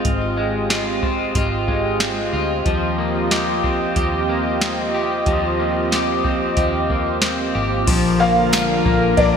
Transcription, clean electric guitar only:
0.00 0.73 D#3 medium
0.00 0.36 G#3 medium
0.00 1.02 C4 medium
0.00 0.69 F4 medium
0.37 1.67 G#3 medium
0.70 1.35 F4 medium
1.03 2.00 C4 medium
1.36 2.33 F4 medium
1.68 2.72 G#3 medium
2.01 3.01 C4 medium
2.33 3.31 F4 medium
2.66 5.26 F3 medium
2.98 4.29 A#3 medium
3.31 3.95 G4 medium
3.64 4.61 C4 medium
3.96 4.93 G4 medium
4.29 5.59 A#3 medium
4.62 6.23 C4 medium
4.94 5.91 G4 medium
5.27 7.87 F3 medium
5.60 6.89 A#3 medium
5.92 6.56 G4 medium
6.24 7.21 C4 medium
6.57 7.54 G4 medium
6.90 8.19 A#3 medium
7.22 7.94 C4 medium
7.55 7.94 G4 medium
7.87 9.37 F3 medium
8.20 8.84 A#3 medium
8.53 9.37 F4 medium
8.86 9.37 A#3 medium
9.18 9.37 D4 medium

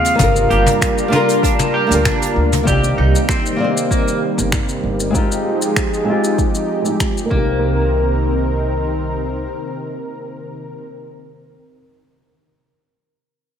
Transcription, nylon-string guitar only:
0.00 0.14 G#3 medium
0.00 0.15 C4 medium
0.00 0.16 D#4 medium
0.00 0.17 G4 medium
0.00 0.18 C5 medium
0.15 1.07 A#3 medium
0.15 1.08 D4 medium
0.19 1.09 F4 medium
0.19 1.10 G4 medium
0.23 1.11 A#4 loud
1.08 1.85 A#3 medium
1.08 1.86 D4 medium
1.08 1.87 F4 medium
1.14 1.88 G4 medium
1.14 1.89 A#4 loud
1.87 2.62 A#3 medium
1.87 2.63 D4 medium
1.91 2.64 F4 medium
1.91 2.65 G4 medium
1.91 2.65 A#4 medium
2.63 3.54 A#3 medium
2.63 3.55 C4 medium
2.63 3.56 D5 medium
2.69 3.57 D#4 medium
2.69 3.58 G4 medium
3.56 5.09 A#3 medium
3.56 5.10 C4 medium
3.56 5.11 D5 medium
3.62 5.12 D#4 medium
3.62 5.13 C5 medium
5.10 6.02 G#3 medium
5.10 6.03 C4 medium
5.14 6.04 D#4 medium
5.14 6.05 F4 medium
5.14 6.06 G4 medium
6.04 6.80 G#3 medium
6.04 6.81 C4 medium
6.04 6.82 D#4 medium
6.10 6.83 F4 medium
6.10 6.84 G4 medium
6.82 7.25 G#3 medium
6.82 7.27 C4 medium
6.82 7.30 D#4 medium
6.89 7.33 G4 medium
7.25 11.07 A#3 medium
7.25 11.10 C4 medium
7.31 7.33 D4 medium
7.31 11.16 D#4 medium
7.37 11.18 G4 medium

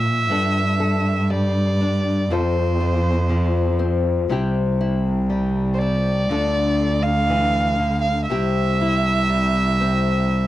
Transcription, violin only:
0.00 1.32 E5 medium
1.30 2.34 D5 medium
2.33 3.81 C5 medium
5.74 5.80 C5 medium
5.79 7.04 D5 medium
7.03 8.01 F5 medium
8.01 8.26 F5 medium
8.26 10.47 E5 medium

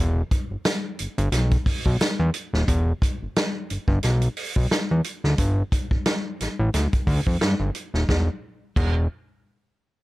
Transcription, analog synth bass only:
0.00 0.23 E1 loud
0.51 0.57 G1 soft
1.00 1.08 G1 soft
1.18 1.29 G1 loud
1.32 1.57 B1 medium
1.86 1.97 B1 medium
2.19 2.30 E2 loud
2.53 2.64 D#1 medium
2.68 2.93 E1 loud
3.22 3.28 G1 soft
3.71 3.78 G1 medium
3.88 3.99 G1 loud
4.04 4.28 B1 loud
4.56 4.67 B1 medium
4.91 5.01 E2 medium
5.24 5.35 D2 medium
5.38 5.63 G1 loud
5.91 5.97 A1 soft
6.41 6.48 A1 medium
6.59 6.70 A1 loud
6.74 6.87 D2 loud
7.07 7.21 D2 loud
7.27 7.37 F2 medium
7.41 7.55 G2 loud
7.60 7.71 G1 medium
7.94 8.05 D#1 medium
8.09 8.29 E1 loud
8.76 9.07 E1 loud

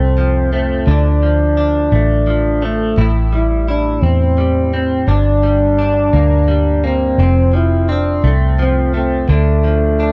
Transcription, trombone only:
0.00 0.52 C4 medium
0.53 0.91 C4 medium
0.89 2.66 D4 medium
2.65 3.07 A3 medium
3.34 3.66 E4 medium
3.70 4.05 D4 medium
4.03 4.73 C4 medium
4.75 5.11 C4 medium
5.10 6.87 D4 medium
6.85 7.57 C4 medium
7.56 7.92 E4 medium
7.90 8.33 D4 medium
8.61 8.93 C4 medium
8.96 9.33 C4 medium
9.32 10.12 A3 medium

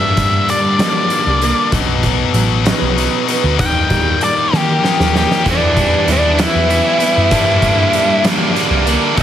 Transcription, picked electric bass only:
0.00 0.11 G2 loud
0.18 0.42 G2 medium
0.79 1.04 G3 medium
1.26 1.51 C2 medium
1.73 2.22 B1 loud
2.34 2.71 A1 medium
2.81 3.06 B1 medium
3.44 3.56 D2 medium
3.91 4.15 D#2 medium
4.53 4.77 D#3 medium
5.00 5.24 D#2 medium
5.46 5.95 E2 loud
6.07 6.44 D#2 medium
6.55 6.79 E2 medium
7.17 7.29 F#2 medium
7.31 7.56 G2 loud
7.63 7.87 G2 medium
8.24 8.49 G3 medium
8.70 8.95 C2 medium
9.17 9.23 B1 loud

